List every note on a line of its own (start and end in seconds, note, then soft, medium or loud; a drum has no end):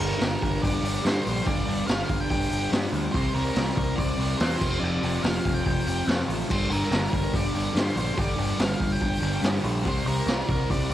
0.00 0.14 G1 medium
0.00 0.18 G2 medium
0.00 0.19 D3 soft
0.00 0.21 G3 medium
0.00 0.41 A#4 medium
0.00 open hi-hat medium
0.18 0.35 G1 loud
0.18 1.02 G2 loud
0.18 0.83 D3 medium
0.18 0.81 G3 loud
0.18 snare loud
0.18 open hi-hat medium
0.42 0.56 G1 medium
0.42 0.62 A#4 medium
0.42 kick medium
0.42 open hi-hat medium
0.62 0.77 G1 loud
0.62 1.05 D5 medium
0.62 kick medium
0.62 open hi-hat medium
0.81 0.98 G1 medium
0.81 1.03 D3 medium
0.81 1.06 G3 medium
0.81 open hi-hat medium
1.03 1.42 G2 medium
1.03 1.19 G2 loud
1.03 1.26 D3 medium
1.03 1.23 G3 loud
1.03 1.24 C5 medium
1.03 snare loud
1.03 open hi-hat medium
1.24 1.40 A#1 medium
1.24 1.44 D3 medium
1.24 1.46 G3 medium
1.24 1.47 C5 loud
1.24 open hi-hat medium
1.43 1.61 G1 loud
1.43 1.85 G2 loud
1.43 1.67 D3 loud
1.43 1.64 G3 loud
1.43 1.87 D5 medium
1.43 kick loud
1.43 open hi-hat medium
1.65 1.82 G1 loud
1.65 1.87 D3 medium
1.65 1.89 G3 medium
1.65 open hi-hat medium
1.87 2.03 G1 loud
1.87 2.70 G2 medium
1.87 2.51 D3 loud
1.87 2.48 G3 loud
1.87 2.20 F5 medium
1.87 snare loud
1.87 open hi-hat medium
2.09 2.23 G1 medium
2.09 kick medium
2.09 open hi-hat medium
2.20 2.29 G5 medium
2.30 2.44 G1 loud
2.30 2.69 G5 medium
2.30 kick loud
2.30 open hi-hat medium
2.49 2.65 G1 medium
2.49 2.72 D3 medium
2.49 2.73 G3 medium
2.49 open hi-hat medium
2.71 3.12 G2 medium
2.71 2.86 G2 loud
2.71 2.95 D3 medium
2.71 2.92 G3 loud
2.71 snare loud
2.71 open hi-hat medium
2.93 3.07 D2 loud
2.93 3.13 D3 medium
2.93 3.12 G3 medium
2.93 open hi-hat medium
3.12 3.28 C2 loud
3.12 3.54 C3 loud
3.12 3.36 G3 loud
3.12 3.32 C5 medium
3.12 kick loud
3.12 open hi-hat medium
3.16 3.33 C4 loud
3.34 3.49 C2 loud
3.34 3.56 G3 medium
3.34 3.58 C4 medium
3.34 3.75 A#4 medium
3.34 open hi-hat medium
3.55 3.70 C2 loud
3.55 4.37 C3 loud
3.55 4.20 G3 loud
3.55 4.17 C4 loud
3.55 snare loud
3.55 open hi-hat medium
3.76 3.91 C2 loud
3.76 3.98 A#4 medium
3.76 kick loud
3.76 open hi-hat medium
3.96 4.12 C2 loud
3.96 4.40 D5 medium
3.96 kick medium
3.96 open hi-hat medium
4.18 4.33 C2 medium
4.18 4.39 G3 medium
4.18 4.40 C4 medium
4.18 open hi-hat medium
4.38 4.54 E2 loud
4.38 4.59 C3 medium
4.38 4.58 G3 loud
4.38 4.60 C4 medium
4.38 4.78 C5 loud
4.38 snare loud
4.38 open hi-hat loud
4.58 4.75 F1 medium
4.58 4.79 F2 medium
4.58 4.81 C3 medium
4.58 4.82 F3 loud
4.58 kick loud
4.58 crash loud
4.80 4.96 F1 loud
4.80 5.21 F2 loud
4.80 5.03 C3 medium
4.80 5.00 F3 loud
4.80 5.23 D5 loud
5.01 5.17 F1 medium
5.01 5.23 C3 medium
5.01 5.24 F3 medium
5.01 open hi-hat medium
5.22 5.38 F1 loud
5.22 6.05 F2 medium
5.22 5.87 C3 loud
5.22 5.85 F3 loud
5.22 5.52 F5 loud
5.22 snare loud
5.22 open hi-hat medium
5.45 5.59 F1 medium
5.45 kick medium
5.45 open hi-hat medium
5.54 5.64 G5 loud
5.65 5.80 F1 loud
5.65 6.04 G5 loud
5.65 kick medium
5.65 open hi-hat medium
5.86 6.01 F1 medium
5.86 6.07 C3 medium
5.86 6.08 F3 medium
5.86 open hi-hat medium
6.06 6.48 F2 medium
6.06 6.22 F2 loud
6.06 6.30 C3 loud
6.06 6.27 F3 medium
6.06 snare loud
6.06 open hi-hat medium
6.28 6.42 A1 medium
6.28 6.50 C3 medium
6.28 6.48 F3 medium
6.28 open hi-hat medium
6.49 6.64 G1 medium
6.49 6.89 G2 loud
6.49 6.72 D3 loud
6.49 6.70 G3 loud
6.49 6.72 C5 medium
6.49 kick loud
6.49 crash loud
6.69 6.84 G1 loud
6.69 6.91 D3 medium
6.69 6.93 G3 medium
6.69 7.15 A#4 medium
6.69 open hi-hat medium
6.90 7.05 G1 loud
6.90 7.72 G2 medium
6.90 7.55 D3 loud
6.90 7.52 G3 loud
6.90 snare loud
6.90 open hi-hat medium
7.13 7.27 G1 medium
7.13 7.36 A#4 medium
7.13 kick loud
7.13 open hi-hat medium
7.34 7.48 G1 loud
7.34 7.74 D5 medium
7.34 kick loud
7.34 open hi-hat medium
7.53 7.68 G1 medium
7.53 7.74 D3 medium
7.53 7.76 G3 medium
7.53 open hi-hat medium
7.73 8.13 G2 medium
7.73 7.89 G2 loud
7.73 7.96 D3 medium
7.73 7.93 G3 medium
7.73 snare loud
7.73 open hi-hat loud
7.79 7.97 C5 loud
7.94 8.10 A#1 medium
7.94 8.14 D3 medium
7.94 8.17 G3 medium
7.94 open hi-hat medium
7.98 8.19 C5 medium
8.14 8.32 G1 loud
8.14 8.55 G2 loud
8.14 8.38 D3 loud
8.14 8.36 G3 loud
8.14 kick loud
8.14 open hi-hat medium
8.20 8.58 D5 loud
8.36 8.52 G1 medium
8.36 8.57 D3 medium
8.36 8.60 G3 medium
8.36 open hi-hat medium
8.57 8.73 G1 loud
8.57 9.40 G2 medium
8.57 9.22 D3 loud
8.57 9.20 G3 loud
8.57 snare loud
8.57 open hi-hat loud
8.61 8.93 F5 loud
8.79 8.94 G1 medium
8.79 kick loud
8.79 open hi-hat medium
8.92 9.00 G5 medium
9.01 9.15 G1 loud
9.01 9.41 G5 loud
9.01 kick medium
9.01 open hi-hat medium
9.20 9.37 G1 medium
9.20 9.41 D3 medium
9.20 9.44 G3 medium
9.20 open hi-hat medium
9.41 9.83 G2 medium
9.41 9.57 G2 loud
9.41 9.64 D3 medium
9.41 9.62 G3 medium
9.41 snare loud
9.41 open hi-hat loud
9.62 9.85 A#1 loud
9.62 9.83 D3 medium
9.62 9.85 G3 medium
9.62 open hi-hat medium
9.83 10.00 C2 loud
9.83 10.25 C3 loud
9.83 10.07 G3 loud
9.83 10.04 C4 loud
9.83 kick loud
9.83 open hi-hat loud
9.89 10.08 C5 loud
10.05 10.20 C2 loud
10.05 10.28 G3 medium
10.05 10.28 C4 medium
10.05 10.49 A#4 medium
10.05 open hi-hat medium
10.26 10.41 C2 loud
10.26 10.94 C3 medium
10.26 10.93 G3 loud
10.26 10.88 C4 loud
10.26 snare loud
10.26 open hi-hat medium
10.49 10.63 C2 medium
10.49 10.69 A#4 medium
10.49 kick medium
10.49 open hi-hat medium
10.70 10.84 C2 medium
10.70 10.94 D5 loud
10.70 kick medium
10.70 open hi-hat medium
10.90 10.94 C2 medium
10.90 10.94 C4 medium